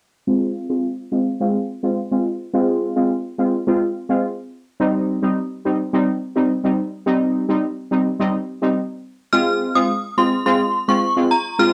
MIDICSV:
0, 0, Header, 1, 3, 480
1, 0, Start_track
1, 0, Key_signature, -4, "minor"
1, 0, Tempo, 566038
1, 231, Time_signature, 4, 2, 24, 8
1, 9947, End_track
2, 0, Start_track
2, 0, Title_t, "Synth bell"
2, 0, Program_c, 0, 98
2, 7909, Note_on_c, 0, 89, 99
2, 8002, Note_off_c, 0, 89, 0
2, 8271, Note_on_c, 0, 87, 77
2, 8364, Note_off_c, 0, 87, 0
2, 8631, Note_on_c, 0, 84, 88
2, 8723, Note_off_c, 0, 84, 0
2, 8870, Note_on_c, 0, 84, 85
2, 8963, Note_off_c, 0, 84, 0
2, 9231, Note_on_c, 0, 85, 79
2, 9324, Note_off_c, 0, 85, 0
2, 9591, Note_on_c, 0, 82, 78
2, 9684, Note_off_c, 0, 82, 0
2, 9831, Note_on_c, 0, 89, 99
2, 9924, Note_off_c, 0, 89, 0
2, 9947, End_track
3, 0, Start_track
3, 0, Title_t, "Synth stab"
3, 0, Program_c, 1, 62
3, 230, Note_on_c, 1, 56, 91
3, 232, Note_on_c, 1, 60, 84
3, 235, Note_on_c, 1, 65, 100
3, 561, Note_off_c, 1, 56, 0
3, 562, Note_off_c, 1, 60, 0
3, 564, Note_off_c, 1, 65, 0
3, 588, Note_on_c, 1, 56, 76
3, 591, Note_on_c, 1, 60, 68
3, 594, Note_on_c, 1, 65, 82
3, 730, Note_off_c, 1, 56, 0
3, 731, Note_off_c, 1, 60, 0
3, 732, Note_off_c, 1, 65, 0
3, 947, Note_on_c, 1, 56, 71
3, 951, Note_on_c, 1, 60, 66
3, 953, Note_on_c, 1, 65, 78
3, 1089, Note_off_c, 1, 56, 0
3, 1091, Note_off_c, 1, 60, 0
3, 1092, Note_off_c, 1, 65, 0
3, 1190, Note_on_c, 1, 56, 94
3, 1193, Note_on_c, 1, 60, 86
3, 1195, Note_on_c, 1, 65, 97
3, 1331, Note_off_c, 1, 56, 0
3, 1332, Note_off_c, 1, 60, 0
3, 1333, Note_off_c, 1, 65, 0
3, 1552, Note_on_c, 1, 56, 75
3, 1556, Note_on_c, 1, 60, 65
3, 1558, Note_on_c, 1, 65, 85
3, 1692, Note_off_c, 1, 56, 0
3, 1694, Note_off_c, 1, 60, 0
3, 1695, Note_off_c, 1, 65, 0
3, 1792, Note_on_c, 1, 56, 74
3, 1794, Note_on_c, 1, 60, 66
3, 1797, Note_on_c, 1, 65, 78
3, 1932, Note_off_c, 1, 56, 0
3, 1933, Note_off_c, 1, 60, 0
3, 1934, Note_off_c, 1, 65, 0
3, 2149, Note_on_c, 1, 56, 92
3, 2151, Note_on_c, 1, 60, 83
3, 2154, Note_on_c, 1, 65, 96
3, 2481, Note_off_c, 1, 56, 0
3, 2482, Note_off_c, 1, 60, 0
3, 2484, Note_off_c, 1, 65, 0
3, 2509, Note_on_c, 1, 56, 75
3, 2511, Note_on_c, 1, 60, 70
3, 2514, Note_on_c, 1, 65, 80
3, 2650, Note_off_c, 1, 56, 0
3, 2651, Note_off_c, 1, 60, 0
3, 2653, Note_off_c, 1, 65, 0
3, 2869, Note_on_c, 1, 56, 68
3, 2871, Note_on_c, 1, 60, 67
3, 2874, Note_on_c, 1, 65, 79
3, 3010, Note_off_c, 1, 56, 0
3, 3011, Note_off_c, 1, 60, 0
3, 3013, Note_off_c, 1, 65, 0
3, 3111, Note_on_c, 1, 56, 93
3, 3114, Note_on_c, 1, 60, 85
3, 3116, Note_on_c, 1, 65, 101
3, 3251, Note_off_c, 1, 56, 0
3, 3253, Note_off_c, 1, 60, 0
3, 3254, Note_off_c, 1, 65, 0
3, 3469, Note_on_c, 1, 56, 75
3, 3471, Note_on_c, 1, 60, 68
3, 3474, Note_on_c, 1, 65, 86
3, 3610, Note_off_c, 1, 56, 0
3, 3611, Note_off_c, 1, 60, 0
3, 3613, Note_off_c, 1, 65, 0
3, 4068, Note_on_c, 1, 55, 88
3, 4070, Note_on_c, 1, 60, 83
3, 4073, Note_on_c, 1, 63, 99
3, 4400, Note_off_c, 1, 55, 0
3, 4402, Note_off_c, 1, 60, 0
3, 4403, Note_off_c, 1, 63, 0
3, 4429, Note_on_c, 1, 55, 80
3, 4431, Note_on_c, 1, 60, 70
3, 4434, Note_on_c, 1, 63, 84
3, 4570, Note_off_c, 1, 55, 0
3, 4571, Note_off_c, 1, 60, 0
3, 4572, Note_off_c, 1, 63, 0
3, 4791, Note_on_c, 1, 55, 70
3, 4793, Note_on_c, 1, 60, 64
3, 4795, Note_on_c, 1, 63, 80
3, 4931, Note_off_c, 1, 55, 0
3, 4932, Note_off_c, 1, 60, 0
3, 4933, Note_off_c, 1, 63, 0
3, 5030, Note_on_c, 1, 55, 91
3, 5032, Note_on_c, 1, 60, 83
3, 5035, Note_on_c, 1, 63, 97
3, 5171, Note_off_c, 1, 55, 0
3, 5172, Note_off_c, 1, 60, 0
3, 5173, Note_off_c, 1, 63, 0
3, 5389, Note_on_c, 1, 55, 79
3, 5392, Note_on_c, 1, 60, 68
3, 5394, Note_on_c, 1, 63, 80
3, 5530, Note_off_c, 1, 55, 0
3, 5532, Note_off_c, 1, 60, 0
3, 5533, Note_off_c, 1, 63, 0
3, 5629, Note_on_c, 1, 55, 72
3, 5631, Note_on_c, 1, 60, 65
3, 5635, Note_on_c, 1, 63, 78
3, 5770, Note_off_c, 1, 55, 0
3, 5771, Note_off_c, 1, 60, 0
3, 5773, Note_off_c, 1, 63, 0
3, 5987, Note_on_c, 1, 55, 89
3, 5989, Note_on_c, 1, 60, 83
3, 5992, Note_on_c, 1, 63, 101
3, 6320, Note_off_c, 1, 55, 0
3, 6321, Note_off_c, 1, 60, 0
3, 6322, Note_off_c, 1, 63, 0
3, 6348, Note_on_c, 1, 55, 79
3, 6350, Note_on_c, 1, 60, 70
3, 6352, Note_on_c, 1, 63, 88
3, 6490, Note_off_c, 1, 55, 0
3, 6491, Note_off_c, 1, 60, 0
3, 6492, Note_off_c, 1, 63, 0
3, 6708, Note_on_c, 1, 55, 71
3, 6711, Note_on_c, 1, 60, 66
3, 6714, Note_on_c, 1, 63, 80
3, 6850, Note_off_c, 1, 55, 0
3, 6851, Note_off_c, 1, 60, 0
3, 6853, Note_off_c, 1, 63, 0
3, 6948, Note_on_c, 1, 55, 93
3, 6951, Note_on_c, 1, 60, 86
3, 6954, Note_on_c, 1, 63, 102
3, 7090, Note_off_c, 1, 55, 0
3, 7091, Note_off_c, 1, 60, 0
3, 7093, Note_off_c, 1, 63, 0
3, 7308, Note_on_c, 1, 55, 74
3, 7310, Note_on_c, 1, 60, 72
3, 7313, Note_on_c, 1, 63, 84
3, 7450, Note_off_c, 1, 55, 0
3, 7451, Note_off_c, 1, 60, 0
3, 7452, Note_off_c, 1, 63, 0
3, 7909, Note_on_c, 1, 56, 97
3, 7911, Note_on_c, 1, 60, 82
3, 7913, Note_on_c, 1, 65, 99
3, 8241, Note_off_c, 1, 56, 0
3, 8242, Note_off_c, 1, 60, 0
3, 8243, Note_off_c, 1, 65, 0
3, 8268, Note_on_c, 1, 56, 76
3, 8270, Note_on_c, 1, 60, 72
3, 8273, Note_on_c, 1, 65, 86
3, 8410, Note_off_c, 1, 56, 0
3, 8411, Note_off_c, 1, 60, 0
3, 8412, Note_off_c, 1, 65, 0
3, 8629, Note_on_c, 1, 56, 72
3, 8631, Note_on_c, 1, 60, 67
3, 8634, Note_on_c, 1, 65, 82
3, 8770, Note_off_c, 1, 56, 0
3, 8771, Note_off_c, 1, 60, 0
3, 8773, Note_off_c, 1, 65, 0
3, 8868, Note_on_c, 1, 56, 94
3, 8871, Note_on_c, 1, 60, 85
3, 8873, Note_on_c, 1, 65, 100
3, 9010, Note_off_c, 1, 56, 0
3, 9011, Note_off_c, 1, 60, 0
3, 9012, Note_off_c, 1, 65, 0
3, 9227, Note_on_c, 1, 56, 75
3, 9230, Note_on_c, 1, 60, 73
3, 9232, Note_on_c, 1, 65, 84
3, 9369, Note_off_c, 1, 56, 0
3, 9370, Note_off_c, 1, 60, 0
3, 9372, Note_off_c, 1, 65, 0
3, 9466, Note_on_c, 1, 56, 76
3, 9468, Note_on_c, 1, 60, 72
3, 9470, Note_on_c, 1, 65, 82
3, 9609, Note_off_c, 1, 56, 0
3, 9610, Note_off_c, 1, 60, 0
3, 9611, Note_off_c, 1, 65, 0
3, 9826, Note_on_c, 1, 56, 91
3, 9828, Note_on_c, 1, 60, 88
3, 9831, Note_on_c, 1, 65, 107
3, 9947, Note_off_c, 1, 56, 0
3, 9947, Note_off_c, 1, 60, 0
3, 9947, Note_off_c, 1, 65, 0
3, 9947, End_track
0, 0, End_of_file